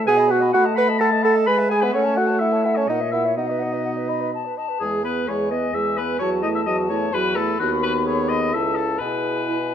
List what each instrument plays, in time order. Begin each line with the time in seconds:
0.05 french horn B2, bassoon G#4, clarinet B4, flute F#5, oboe G#5
0.17 clarinet D#5, flute B5
0.29 bassoon F#4, clarinet B4, oboe F#5, flute F#5
0.40 clarinet D#5, flute B5
0.52 french horn A3, bassoon F#4, clarinet F#5, oboe F#5, flute B5
0.65 clarinet D#5, flute A5
0.76 bassoon B4, clarinet F#5, flute B5, oboe B5
0.88 clarinet D#5, flute A5
0.99 bassoon A4, clarinet F#5, oboe A5, flute B5
1.11 clarinet D#5, flute A5
1.22 bassoon A4, clarinet F#5, oboe A5, flute B5
1.35 clarinet D#5, flute A5
1.47 french horn G#3, bassoon B4, clarinet G#5, oboe B5, flute B5
1.58 clarinet E5, flute G#5
1.69 bassoon G#4, oboe G#5, clarinet G#5, flute B5
1.81 bassoon B3, oboe B4, clarinet E5, flute G#5
1.92 french horn A3, bassoon C#4, clarinet A4, oboe C#5, flute F#5
2.04 clarinet C#5, flute A5
2.15 bassoon F#4, clarinet A4, flute F#5, oboe F#5
2.26 clarinet C#5, flute A5
2.39 bassoon E4, clarinet A4, oboe E5, flute F#5
2.52 clarinet C#5, flute A5
2.63 bassoon E4, clarinet A4, oboe E5, flute F#5
2.76 bassoon C#4, oboe C#5, clarinet C#5, flute A5
2.88 french horn A#2, bassoon D#4, clarinet A#4, oboe D#5, flute F#5
3.00 clarinet C#5, flute E5
3.12 bassoon E4, clarinet A#4, oboe E5, flute F#5
3.25 clarinet C#5, flute E5
3.35 french horn B2, bassoon D#4, oboe D#5, clarinet D#5, flute F#5
3.47 clarinet B4, flute D#5
3.58 flute F#5
3.63 clarinet D#5
3.72 clarinet B4, flute D#5
3.84 clarinet D#5, flute F#5
3.98 clarinet B4
4.07 clarinet D#5, flute B5
4.21 clarinet B4
4.33 clarinet D#5, flute A5
4.46 clarinet B4
4.57 clarinet D#5, flute A5
4.69 clarinet B4
4.80 bassoon E2, french horn G#3, oboe G#4, clarinet G#4
5.04 french horn B3, clarinet B4, oboe B4
5.27 bassoon E2, french horn G#3, clarinet G#4, oboe C#5, flute G#5
5.51 french horn B3, clarinet B4, oboe D#5
5.74 bassoon E2, french horn G#3, clarinet G#4, oboe E5
5.97 french horn B3, clarinet B4, oboe B4
6.20 bassoon E2, french horn F#3, clarinet F#4, oboe C#5, flute A5
6.43 french horn A3, clarinet E4, oboe D#5
6.55 oboe E5
6.66 bassoon E2, french horn F#3, clarinet F#4, oboe D#5
6.89 french horn A3, clarinet E4, oboe C#5
7.13 bassoon E2, french horn F#3, clarinet F#4, oboe B4, flute B5
7.36 french horn A3, clarinet E4, oboe A4
7.59 bassoon D#2, french horn B3, oboe F#4, clarinet F#4
7.83 oboe B4
8.06 clarinet G#4, oboe C#5
8.29 oboe D#5
8.53 bassoon C#2, french horn E4, clarinet A4, oboe E5, flute A5
8.75 oboe A4
8.99 bassoon B2, french horn E4, clarinet G#4, oboe B4, flute G#5
9.49 clarinet E4